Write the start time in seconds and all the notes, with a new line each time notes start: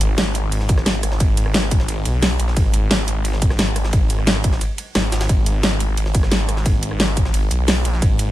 0.01 G#1, closed hi-hat, ride
0.18 snare, closed hi-hat, ride
0.35 closed hi-hat, ride
0.52 closed hi-hat, ride
0.61 snare
0.69 kick, closed hi-hat, ride
0.78 cross-stick, snare
0.86 snare, closed hi-hat, ride
0.95 ride
1.03 cross-stick, closed hi-hat, ride
1.12 snare
1.20 kick, closed hi-hat, ride
1.37 G#1, closed hi-hat, ride
1.46 cross-stick
1.54 snare, closed hi-hat, ride
1.63 cross-stick
1.71 kick, closed hi-hat, ride
1.80 snare
1.88 G#1, closed hi-hat, ride
2.05 B1, closed hi-hat, ride
2.22 B1, snare, closed hi-hat, open hi-hat
2.40 A#1, closed hi-hat, ride
2.48 snare
2.57 G#1, kick, closed hi-hat, ride
2.74 G#1, closed hi-hat, ride
2.91 snare, closed hi-hat, ride
3.08 closed hi-hat, ride
3.25 closed hi-hat, ride
3.33 snare
3.42 kick, closed hi-hat, ride
3.50 cross-stick, snare
3.59 snare, closed hi-hat, ride
3.67 ride
3.76 cross-stick, closed hi-hat, ride
3.85 snare
3.93 kick, closed hi-hat, ride
4.10 G#1, closed hi-hat, ride
4.19 cross-stick
4.27 snare, closed hi-hat, ride
4.36 cross-stick
4.44 kick, closed hi-hat, ride
4.53 snare
4.61 closed hi-hat, ride
4.78 closed hi-hat, ride
4.95 G#1, snare, closed hi-hat, open hi-hat
5.12 snare, closed hi-hat, ride
5.21 snare, ride
5.29 G#1, kick, closed hi-hat, ride
5.46 G#1, closed hi-hat, ride
5.63 snare, closed hi-hat, ride
5.80 closed hi-hat, ride
5.97 closed hi-hat, ride
6.06 snare
6.14 kick, closed hi-hat, ride
6.23 cross-stick, snare
6.32 snare, closed hi-hat, ride
6.40 ride
6.49 cross-stick, closed hi-hat, ride
6.57 snare
6.66 kick, closed hi-hat, ride
6.83 G#1, closed hi-hat, ride
6.91 cross-stick
7.00 snare, closed hi-hat, ride
7.08 cross-stick
7.17 kick, closed hi-hat, ride
7.25 snare
7.34 G#1, closed hi-hat, ride
7.51 B1, closed hi-hat, ride
7.68 B1, snare, closed hi-hat, open hi-hat
7.85 A#1, closed hi-hat, ride
7.94 snare
8.02 G#1, kick, closed hi-hat, ride
8.19 G#1, closed hi-hat, ride